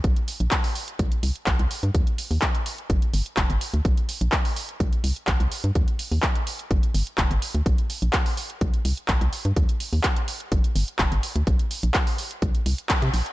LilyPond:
<<
  \new Staff \with { instrumentName = "FM bass" } { \clef bass \time 4/4 \key g \phrygian \tempo 4 = 126 bes,,16 r8 bes,,16 r4 c,16 r16 c,16 r16 bes,,16 c,16 r16 g,16 | ees,16 r8 ees,16 r4 g,,16 r16 g,,16 r16 f,,16 g,,16 r16 d,16 | bes,,16 r8 bes,,16 r4 c,16 r16 c,16 r16 bes,,16 c,16 r16 g,16 | ees,16 r8 ees,16 r4 g,,16 r16 g,,16 r16 f,,16 g,,16 r16 d,16 |
bes,,16 r8 bes,,16 r4 c,16 r16 c,16 r16 bes,,16 c,16 r16 g,16 | ees,16 r8 ees,16 r4 g,,16 r16 g,,16 r16 f,,16 g,,16 r16 d,16 | bes,,16 r8 bes,,16 r4 c,16 r16 c,16 r8 c16 bes,,16 r16 | }
  \new DrumStaff \with { instrumentName = "Drums" } \drummode { \time 4/4 <hh bd>16 hh16 hho16 hh16 <hc hh bd>16 hho16 hho16 hh16 <hh bd>16 hh16 hho16 hh16 <hc hh bd>16 hh16 hho16 hh16 | <hh bd>16 hh16 hho16 hho16 <hc hh bd>16 hh16 hho16 hh16 <hh bd>16 hh16 hho16 hh16 <hc hh bd>16 hh16 hho16 hh16 | <hh bd>16 hh16 hho16 hh16 <hc hh bd>16 hho16 hho16 hh16 <hh bd>16 hh16 hho16 hh16 <hc hh bd>16 hh16 hho16 hh16 | <hh bd>16 hh16 hho16 hho16 <hc hh bd>16 hh16 hho16 hh16 <hh bd>16 hh16 hho16 hh16 <hc hh bd>16 hh16 hho16 hh16 |
<hh bd>16 hh16 hho16 hh16 <hc hh bd>16 hho16 hho16 hh16 <hh bd>16 hh16 hho16 hh16 <hc hh bd>16 hh16 hho16 hh16 | <hh bd>16 hh16 hho16 hho16 <hc hh bd>16 hh16 hho16 hh16 <hh bd>16 hh16 hho16 hh16 <hc hh bd>16 hh16 hho16 hh16 | <hh bd>16 hh16 hho16 hh16 <hc hh bd>16 hho16 hho16 hh16 <hh bd>16 hh16 hho16 hh16 <hc hh bd>16 hh16 hho16 hh16 | }
>>